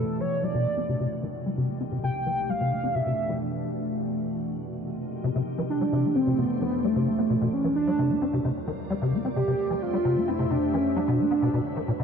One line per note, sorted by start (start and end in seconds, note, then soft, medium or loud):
0.00 0.66 B2 medium
0.00 0.66 E3 medium
0.00 0.66 A3 medium
0.00 0.66 D4 medium
0.00 0.22 A4 loud
0.20 0.24 E3 medium
0.20 0.45 C#5 medium
0.43 0.47 F#3 loud
0.43 1.35 D5 loud
0.55 0.67 B2 loud
0.66 0.73 C4 medium
0.77 0.81 C4 medium
0.89 0.95 C3 medium
1.00 1.07 C3 medium
1.07 3.41 G4 medium
1.23 1.27 D#3 medium
1.46 1.50 G3 medium
1.58 1.71 C3 loud
1.69 4.32 A3 medium
1.69 1.76 C4 medium
1.81 4.33 E3 medium
1.81 1.84 C4 medium
1.85 4.33 B2 medium
1.92 1.99 C3 medium
1.99 4.33 D4 medium
2.03 2.10 C3 medium
2.03 2.51 G5 loud
2.26 2.30 E3 medium
2.49 2.53 G3 loud
2.49 2.97 F5 loud
2.61 2.74 C3 medium
2.72 2.79 C4 medium
2.84 2.88 C4 medium
2.95 3.02 C3 medium
2.95 3.41 E5 loud
3.07 3.13 C3 medium
3.29 3.33 E3 medium
4.74 7.07 G4 medium
5.24 5.31 C3 medium
5.24 7.07 E3 medium
5.36 5.42 C3 medium
5.57 5.62 E3 medium
5.57 7.07 A3 medium
5.62 7.44 D4 medium
5.62 7.07 C5 medium
5.70 6.17 D4 loud
5.81 5.85 G3 loud
5.93 6.06 C3 loud
6.04 6.11 C4 medium
6.16 6.40 C4 loud
6.16 6.20 C4 medium
6.27 6.34 C3 medium
6.38 6.45 C3 medium
6.38 6.61 B3 loud
6.61 6.65 E3 medium
6.61 6.86 B3 loud
6.84 6.88 G3 loud
6.84 7.07 A3 medium
6.96 7.09 C3 loud
7.07 7.55 A3 loud
7.07 7.14 B3 medium
7.19 7.23 B3 medium
7.30 7.37 B2 medium
7.41 7.48 B2 medium
7.53 7.75 C#4 loud
7.64 7.68 E3 medium
7.76 8.64 D4 loud
7.87 7.91 F#3 loud
7.99 8.12 C3 loud
8.10 8.17 C4 medium
8.22 8.26 C4 medium
8.33 8.40 C3 medium
8.45 8.51 C3 medium
8.67 8.71 D#3 medium
8.90 8.94 G3 loud
8.90 10.74 A3 medium
9.00 9.15 C3 loud
9.00 10.74 D4 medium
9.13 9.20 C4 medium
9.25 9.29 C4 medium
9.32 10.74 G4 medium
9.32 10.74 C5 medium
9.32 11.65 E5 medium
9.36 9.43 C3 medium
9.36 9.84 G4 loud
9.48 9.54 C3 medium
9.71 9.74 E3 medium
9.82 10.29 F4 loud
9.93 9.97 G3 loud
10.05 10.18 C3 loud
10.16 10.23 C4 medium
10.28 10.32 C4 medium
10.28 10.52 E4 loud
10.39 10.46 C3 medium
10.51 10.57 C3 medium
10.51 10.73 D4 medium
10.74 10.78 E3 medium
10.74 10.98 C#4 loud
10.96 11.00 F#3 loud
10.96 12.04 D4 loud
11.08 11.21 B2 loud
11.19 11.26 B3 medium
11.31 11.35 B3 medium
11.42 11.49 B2 medium
11.54 11.60 B2 medium
11.77 11.81 D#3 medium
11.86 11.92 A#2 medium
11.86 12.04 D4 medium
11.99 12.04 C3 medium